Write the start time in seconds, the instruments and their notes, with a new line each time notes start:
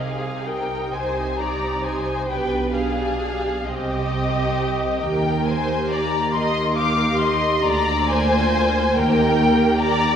Already playing: double bass section C2, cello section C3, violin section G#4 F5
0.00 viola section D#4 G4
0.45 violin section A#4 G5
0.91 double bass section C2, cello section C3, violin section C5 G#5
1.38 viola section D#4 G4, violin section D5 A#5
1.84 violin section C5 G#5
2.27 double bass section B1, cello section B2, viola section D4 G4, violin section B4 G5
2.74 viola section D4 G4, violin section G#4 F5
3.64 double bass section C2, cello section C3, viola section C4 G4, violin section G4 D#5
4.10 viola section C4 G4
5.02 double bass section D#2, cello section D#3, viola section A#3 G4, violin section A#4 G5
5.45 viola section A#3 G4, violin section C5 G#5
5.88 violin section D5 A#5
6.32 double bass section D#2, cello section D#3, violin section C6
6.36 violin section D#5
6.75 viola section A#3 G4, violin section F5 D6
7.18 violin section D#5 C6
7.62 double bass section D2, cello section D3, violin section D5 A#5
8.07 viola section A#3 F4, violin section C5 G#5
8.94 double bass section D#2, cello section D#3, viola section A#3 G4, violin section A#4 G5
9.37 viola section A#3 G4
9.79 violin section D5 A#5